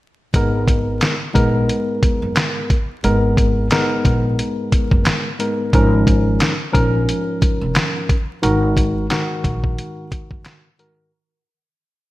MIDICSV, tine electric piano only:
0, 0, Header, 1, 2, 480
1, 0, Start_track
1, 0, Tempo, 674157
1, 242, Time_signature, 4, 2, 24, 8
1, 8617, End_track
2, 0, Start_track
2, 0, Title_t, "Tine electric piano"
2, 0, Program_c, 0, 4
2, 246, Note_on_c, 0, 44, 90
2, 249, Note_on_c, 0, 56, 83
2, 252, Note_on_c, 0, 59, 86
2, 255, Note_on_c, 0, 70, 95
2, 807, Note_off_c, 0, 44, 0
2, 808, Note_off_c, 0, 56, 0
2, 809, Note_off_c, 0, 59, 0
2, 811, Note_off_c, 0, 70, 0
2, 951, Note_on_c, 0, 44, 92
2, 954, Note_on_c, 0, 56, 89
2, 956, Note_on_c, 0, 59, 85
2, 959, Note_on_c, 0, 70, 103
2, 1955, Note_off_c, 0, 44, 0
2, 1957, Note_off_c, 0, 56, 0
2, 1957, Note_off_c, 0, 59, 0
2, 1959, Note_off_c, 0, 70, 0
2, 2160, Note_on_c, 0, 44, 85
2, 2163, Note_on_c, 0, 56, 86
2, 2165, Note_on_c, 0, 59, 87
2, 2168, Note_on_c, 0, 70, 102
2, 2608, Note_off_c, 0, 44, 0
2, 2610, Note_off_c, 0, 56, 0
2, 2611, Note_off_c, 0, 59, 0
2, 2612, Note_off_c, 0, 70, 0
2, 2642, Note_on_c, 0, 44, 89
2, 2645, Note_on_c, 0, 56, 82
2, 2648, Note_on_c, 0, 59, 91
2, 2650, Note_on_c, 0, 70, 105
2, 3760, Note_off_c, 0, 44, 0
2, 3762, Note_off_c, 0, 56, 0
2, 3763, Note_off_c, 0, 59, 0
2, 3764, Note_off_c, 0, 70, 0
2, 3838, Note_on_c, 0, 44, 77
2, 3840, Note_on_c, 0, 56, 72
2, 3843, Note_on_c, 0, 59, 68
2, 3846, Note_on_c, 0, 70, 80
2, 4063, Note_off_c, 0, 44, 0
2, 4065, Note_off_c, 0, 56, 0
2, 4066, Note_off_c, 0, 59, 0
2, 4068, Note_off_c, 0, 70, 0
2, 4083, Note_on_c, 0, 44, 96
2, 4086, Note_on_c, 0, 53, 92
2, 4089, Note_on_c, 0, 61, 92
2, 4092, Note_on_c, 0, 70, 99
2, 4645, Note_off_c, 0, 44, 0
2, 4647, Note_off_c, 0, 53, 0
2, 4648, Note_off_c, 0, 61, 0
2, 4649, Note_off_c, 0, 70, 0
2, 4787, Note_on_c, 0, 44, 88
2, 4789, Note_on_c, 0, 53, 88
2, 4792, Note_on_c, 0, 61, 86
2, 4795, Note_on_c, 0, 70, 109
2, 5793, Note_off_c, 0, 44, 0
2, 5794, Note_off_c, 0, 53, 0
2, 5796, Note_off_c, 0, 61, 0
2, 5797, Note_off_c, 0, 70, 0
2, 5995, Note_on_c, 0, 44, 94
2, 5997, Note_on_c, 0, 51, 89
2, 6000, Note_on_c, 0, 66, 88
2, 6003, Note_on_c, 0, 70, 97
2, 6446, Note_off_c, 0, 44, 0
2, 6447, Note_off_c, 0, 51, 0
2, 6448, Note_off_c, 0, 66, 0
2, 6450, Note_off_c, 0, 70, 0
2, 6479, Note_on_c, 0, 44, 93
2, 6481, Note_on_c, 0, 51, 82
2, 6483, Note_on_c, 0, 66, 86
2, 6487, Note_on_c, 0, 70, 91
2, 7598, Note_off_c, 0, 44, 0
2, 7600, Note_off_c, 0, 51, 0
2, 7601, Note_off_c, 0, 66, 0
2, 7603, Note_off_c, 0, 70, 0
2, 7678, Note_on_c, 0, 44, 77
2, 7681, Note_on_c, 0, 51, 65
2, 7684, Note_on_c, 0, 66, 66
2, 7686, Note_on_c, 0, 70, 89
2, 7904, Note_off_c, 0, 44, 0
2, 7905, Note_off_c, 0, 51, 0
2, 7907, Note_off_c, 0, 66, 0
2, 7908, Note_off_c, 0, 70, 0
2, 8617, End_track
0, 0, End_of_file